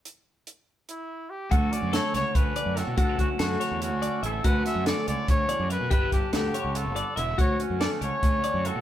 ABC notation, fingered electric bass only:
X:1
M:7/8
L:1/16
Q:1/4=143
K:D
V:1 name="Fingered electric bass" clef=bass
z12 z2 | D,,2 z F,,2 z C,, z D,,2 z F,,2 B,, | D,,2 D,, z F,,2 z E,,2 D,,2 z A,,,2 | D,,2 z F,,2 z C,, z D,,2 z F,,2 B,, |
G,,,2 G,,, z D,,2 z C,,2 G,,,2 z E,,,2 | D,,2 z F,,2 z C,, z D,,2 z F,,2 B,, |]